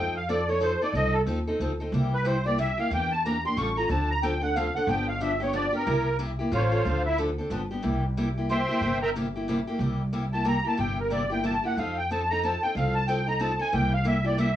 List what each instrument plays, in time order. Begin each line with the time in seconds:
Already playing: upright bass F2, steel-string acoustic guitar F3 C4 D#4 A4, accordion G5
0.16 accordion F5
0.29 steel-string acoustic guitar F3 C4 D#4 A4, accordion D5
0.49 steel-string acoustic guitar C4 D#4 A4, accordion C#5
0.60 steel-string acoustic guitar F3 C4 D#4 A4, accordion C5
0.82 steel-string acoustic guitar C4 D#4 A4, accordion D5
0.93 upright bass C2, steel-string acoustic guitar F3 C4 D#4, accordion D#5
0.97 steel-string acoustic guitar A4
1.14 accordion A4
1.26 upright bass D#2, steel-string acoustic guitar F3 C4 D#4 A4
1.48 steel-string acoustic guitar C4 D#4 A4
1.59 upright bass D2, steel-string acoustic guitar F3 C4 D#4 A4
1.80 steel-string acoustic guitar C4 D#4 A4
1.92 upright bass C2, steel-string acoustic guitar C3 G3 A#3 E4 G4
2.14 accordion B4
2.25 steel-string acoustic guitar C3 G3 A#3 E4 G4, accordion C5
2.46 steel-string acoustic guitar A#3 E4 G4, accordion D5
2.58 steel-string acoustic guitar C3 G3 A#3 E4 G4, accordion E5
2.77 steel-string acoustic guitar A#3 E4 G4, accordion F5
2.90 upright bass E2, steel-string acoustic guitar E3 A#3 D4 G4, accordion G5
3.11 accordion A5
3.25 steel-string acoustic guitar E3 A#3 D4 G4, accordion A#5
3.45 steel-string acoustic guitar A#3 D4 G4, accordion C6
3.56 upright bass A1, steel-string acoustic guitar F3 G3 C#4 F4 A4, accordion C#6
3.77 steel-string acoustic guitar C#4 F4 A4, accordion A#5
3.89 upright bass D2, steel-string acoustic guitar D3 F3 C4 D4 A4, accordion A5
4.11 accordion A#5
4.23 steel-string acoustic guitar D3 F3 C4 D4 A4, accordion G5
4.41 steel-string acoustic guitar C4 D4 A4, accordion F#5
4.55 steel-string acoustic guitar D3 F3 C4 D4 A4, accordion F5
4.75 steel-string acoustic guitar C4 D4 A4, accordion F#5
4.87 upright bass G1, steel-string acoustic guitar D3 F3 B3 D4 G4, accordion G5
5.08 accordion F5
5.20 steel-string acoustic guitar D3 F3 B3 D4 G4, accordion E5
5.40 steel-string acoustic guitar B3 D4 G4, accordion C#5
5.53 steel-string acoustic guitar D3 F3 B3 D4 G4, accordion D5
5.72 steel-string acoustic guitar B3 D4 G4, accordion A#4
5.86 upright bass C2, steel-string acoustic guitar C3 G3 A#3 E4 G4
6.19 steel-string acoustic guitar C3 G3 A#3 E4 G4
6.39 steel-string acoustic guitar A#3 E4 G4
6.52 upright bass A1, steel-string acoustic guitar F3 G3 C#4 F4 A4, accordion F4 C5 C#5 F5
6.72 steel-string acoustic guitar C#4 F4 A4
6.85 upright bass D2, steel-string acoustic guitar D3 F3 C4 D4 A4
7.06 accordion E4 E5
7.18 steel-string acoustic guitar D3 F3 C4 D4 A4
7.38 steel-string acoustic guitar C4 D4 A4
7.50 upright bass G1, steel-string acoustic guitar D3 F3 B3 D4 G4
7.71 steel-string acoustic guitar B3 D4 G4
7.82 upright bass C2, steel-string acoustic guitar C3 G3 A#3 E4 G4
8.17 steel-string acoustic guitar C3 G3 A#3 E4 G4
8.38 steel-string acoustic guitar A#3 E4 G4
8.49 steel-string acoustic guitar C3 G3 A#3 E4 G4, accordion C5 E5 G5 C6
8.69 steel-string acoustic guitar A#3 E4 G4
8.81 upright bass G1, steel-string acoustic guitar C3 G3 A#3 E4 G4
9.02 accordion A#4 E5 G5 A#5
9.16 steel-string acoustic guitar C3 G3 A#3 E4 G4
9.36 steel-string acoustic guitar A#3 E4 G4
9.48 steel-string acoustic guitar C3 G3 A#3 E4 G4
9.67 steel-string acoustic guitar A#3 E4 G4
9.79 upright bass C2, steel-string acoustic guitar C3 G3 A#3 E4 G4
10.12 steel-string acoustic guitar C3 G3 A#3 E4 G4
10.33 steel-string acoustic guitar A#3 E4 G4, accordion A5
10.45 steel-string acoustic guitar C3 G3 A#3 E4 G4, accordion A#5
10.64 steel-string acoustic guitar A#3 E4 G4, accordion A5
10.77 upright bass G1, steel-string acoustic guitar C3 G3 A#3 E4 G4, accordion G5
11.00 accordion A#4
11.10 steel-string acoustic guitar C3 G3 A#3 E4 G4, accordion D5
11.30 steel-string acoustic guitar A#3 E4 G4, accordion G5
11.44 steel-string acoustic guitar C3 G3 A#3 E4 G4, accordion A5
11.64 steel-string acoustic guitar A#3 E4 G4, accordion F#5
11.77 upright bass F2, steel-string acoustic guitar F3 C4 D#4 A4, accordion F5
11.98 accordion G5
12.11 steel-string acoustic guitar F3 C4 D#4 A4, accordion A5
12.30 steel-string acoustic guitar C4 D#4 A4, accordion A#5
12.43 steel-string acoustic guitar F3 C4 D#4 A4, accordion A5
12.63 steel-string acoustic guitar C4 D#4 A4, accordion G5
12.75 upright bass C2, steel-string acoustic guitar F3 C4 D#4 A4, accordion F5
12.95 accordion A5
13.07 steel-string acoustic guitar F3 C4 D#4 A4, accordion G5
13.26 steel-string acoustic guitar C4 D#4 A4, accordion A#5
13.40 steel-string acoustic guitar F3 C4 D#4 A4, accordion A5
13.59 steel-string acoustic guitar C4 D#4 A4, accordion G#5
13.72 upright bass C2, steel-string acoustic guitar C3 G3 A#3 E4 G4, accordion G5
13.93 accordion F5
14.05 steel-string acoustic guitar C3 G3 A#3 E4 G4, accordion E5
14.24 steel-string acoustic guitar A#3 E4 G4, accordion D5
14.38 steel-string acoustic guitar C3 G3 A#3 E4 G4, accordion E5